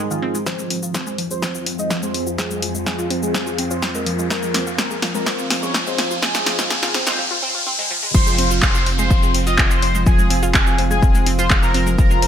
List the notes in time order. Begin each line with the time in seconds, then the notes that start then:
Already playing: G#2 D#3 G#3 C4 D#4 G#4 A#4 D#5
0.11 D#3 F4, shaker
0.22 C4
0.35 G#3, shaker
0.46 F2 F3 C4 F4 G#4 C5, kick, snare, riser, shaker
0.59 G#3, shaker
0.70 C4, open hi-hat
0.83 F3 C4 F4, shaker
0.94 C4 C5, kick, snare, shaker
1.07 G#3, shaker
1.18 F3 C4 F4, open hi-hat
1.31 G#3 C5, shaker
1.42 C4, kick, snare, shaker
1.55 F4, shaker
1.66 C4, open hi-hat
1.79 G#3 D#5, shaker
1.90 F3, kick, snare, shaker
2.03 G#3 C5, shaker
2.14 C4, open hi-hat
2.27 F4, shaker
2.38 F3 C4 F4 G#4, kick, snare, shaker
2.51 G#3, shaker
2.62 F3, open hi-hat
2.75 F3 G#3 C4 F4, shaker
2.86 C4 G#4, kick, snare, shaker
2.99 F4, shaker
3.10 F3 C4 F4, open hi-hat
3.23 G#3 G#4, shaker
3.34 F3, kick, snare, shaker
3.47 F4, shaker
3.58 C4, open hi-hat
3.71 F4 C5, shaker
3.82 C4, kick, snare, shaker
3.95 G#3 A#4, shaker
4.06 F3, open hi-hat
4.19 G#3, shaker
4.30 F3 C4 F4 A#4, kick, snare, shaker
4.43 G#3, shaker
4.54 C4, snare, open hi-hat
4.67 F3 C4 F4, shaker
4.78 C4 A#4, kick, snare, shaker
4.91 G#3, shaker
5.02 F3 C4 F4, snare, open hi-hat
5.15 G#3 A#4, shaker
5.26 C4, kick, snare, shaker
5.39 F4, shaker
5.50 C4, snare, open hi-hat
5.63 G#3 C#5, shaker
5.74 F3, kick, snare, shaker
5.87 G#3 C5, shaker
5.98 C4, snare, open hi-hat
6.11 F4, shaker
6.22 F3 C4 F4 G#4, kick, snare, shaker
6.35 G#3, snare, shaker
6.46 F3, snare, open hi-hat
6.59 F3 G#3 C4 F4, snare, shaker
6.70 C4 G#4, kick, snare, shaker
6.83 F4, snare, shaker
6.94 F3 C4 F4, snare, open hi-hat
7.07 G#3 C5, snare, shaker
7.18 F3
7.31 F4
7.42 C4
7.55 F4
7.66 C4
7.79 G#3
7.90 F3
8.03 G#3
8.14 F1 F3 G#3 C4 F4 C5 C6, kick, crash, downlifter, shaker
8.27 G#3 G#4, shaker
8.38 C4 C5, open hi-hat
8.51 F3 C4 F4 F5, shaker
8.62 G#4 C5 G#5 C6, kick, clap, shaker
8.75 F4 F5, shaker
8.86 F3 C4 F4 C5, open hi-hat
8.99 G#3 G#4 C5 C6, shaker
9.10 F3 F4, kick, shaker
9.23 G#3 G#4, shaker
9.34 C4 C5, open hi-hat
9.47 F4 D#5 F5 D#6, shaker
9.58 G#4 G#5, kick, clap, shaker
9.71 F4 C5 F5 C6, shaker
9.82 C4 C5, open hi-hat
9.95 G#3 G#4, shaker
10.06 F3 C4 F4 G#4 G#5, kick, shaker
10.19 G#3 G#4, shaker
10.30 C4 C5, open hi-hat
10.43 F3 C4 F4 F5, shaker
10.54 G#4 G#5, kick, clap, shaker
10.67 F4 F5, shaker
10.78 F3 C4 F4 C5, open hi-hat
10.91 G#3 G#4 G#5, shaker
11.02 F3 F4, kick, shaker
11.15 G#3 G#4, shaker
11.26 C4 C5, open hi-hat
11.39 F4 C5 F5 C6, shaker
11.50 G#4 G#5, kick, clap, shaker
11.63 F4 A#4 F5 A#5, shaker
11.74 C4 C5, open hi-hat
11.87 G#3 G#4, shaker
11.98 F3 C4 F4 A#4 A#5, kick, shaker
12.11 G#3 G#4, shaker
12.22 C4 C5, open hi-hat